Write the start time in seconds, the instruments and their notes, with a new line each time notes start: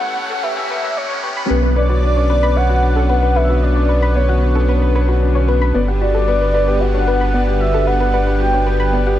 Already playing: analog synth pad E3 A3 C#4 F#5, upright piano A3 C#4 G4 C#5, soft synth lead F#5, riser
0.03 upright piano C#5, synth arpeggio sound F#5
0.17 upright piano A3
0.30 upright piano C#4, synth arpeggio sound A4
0.43 upright piano G4, synth arpeggio sound B4, soft synth lead E5
0.57 upright piano C#4, synth arpeggio sound B4
0.70 upright piano A3, synth arpeggio sound B4
0.83 synth arpeggio sound B4, upright piano C#5
0.96 upright piano A3, soft synth lead C#5
1.10 upright piano C#4, synth arpeggio sound C#5
1.23 upright piano G4, synth arpeggio sound B4
1.36 upright piano C#4, synth arpeggio sound B5
1.49 sub bass B1, analog synth pad D3 B3 D5, upright piano B3, synth arpeggio sound B4
1.63 upright piano B4, synth arpeggio sound B4
1.76 synth arpeggio sound B4, upright piano C#5, soft synth lead D5
1.89 upright piano F#4, synth arpeggio sound B4
2.03 upright piano D4
2.16 upright piano C#4, synth arpeggio sound C#5
2.30 upright piano B3, synth arpeggio sound B4
2.43 upright piano B4, synth arpeggio sound B5
2.56 synth arpeggio sound B3, upright piano C#5, soft synth lead F#5
2.70 upright piano F#4, synth arpeggio sound F#5
2.83 upright piano D4
2.96 upright piano C#4, synth arpeggio sound A4
3.09 upright piano B3, synth arpeggio sound B4
3.23 upright piano B4, synth arpeggio sound B4
3.36 synth arpeggio sound B4, upright piano C#5, soft synth lead E5
3.49 upright piano F#4, synth arpeggio sound B4
3.62 upright piano D4, soft synth lead D5
3.76 upright piano C#4, synth arpeggio sound C#5
3.89 upright piano B3, synth arpeggio sound B4
4.02 upright piano B4, synth arpeggio sound B5
4.15 synth arpeggio sound B3, upright piano C#5, soft synth lead C#5
4.28 upright piano F#4, synth arpeggio sound F#5
4.42 upright piano D4
4.55 upright piano C#4, synth arpeggio sound A4
4.68 upright piano B3, synth arpeggio sound B4
4.82 upright piano B4, synth arpeggio sound B4
4.95 synth arpeggio sound B4, upright piano C#5
5.08 upright piano F#4, synth arpeggio sound B4
5.22 upright piano D4
5.35 upright piano C#4, synth arpeggio sound C#5
5.48 upright piano B3, synth arpeggio sound B4
5.61 upright piano B4, synth arpeggio sound B5
5.74 sub bass G1, analog synth pad G3 B3, synth arpeggio sound B3, upright piano D5
5.88 upright piano G4, synth arpeggio sound F#5
6.01 upright piano F#4, soft synth lead D5
6.14 upright piano D4, synth arpeggio sound A4
6.28 upright piano B3, synth arpeggio sound B4
6.41 upright piano B4, synth arpeggio sound B4
6.54 synth arpeggio sound B4, upright piano D5
6.67 upright piano G4, synth arpeggio sound B4
6.81 upright piano F#4, soft synth lead F#5
6.94 upright piano D4, synth arpeggio sound C#5
7.07 upright piano B3, synth arpeggio sound B4
7.20 upright piano B4, synth arpeggio sound B5
7.34 synth arpeggio sound B3, upright piano D5
7.47 upright piano G4, synth arpeggio sound F#5
7.60 upright piano F#4, soft synth lead E5
7.74 upright piano D4, synth arpeggio sound A4
7.87 upright piano B3, synth arpeggio sound B4, soft synth lead F#5
8.00 upright piano B4, synth arpeggio sound B4
8.14 synth arpeggio sound B4, upright piano D5
8.27 upright piano G4, synth arpeggio sound B4
8.40 upright piano F#4, soft synth lead G5
8.53 upright piano D4, synth arpeggio sound C#5
8.66 upright piano B3, synth arpeggio sound B4
8.80 upright piano B4, synth arpeggio sound B5
8.93 synth arpeggio sound B3, upright piano D5
9.07 upright piano G4, synth arpeggio sound F#5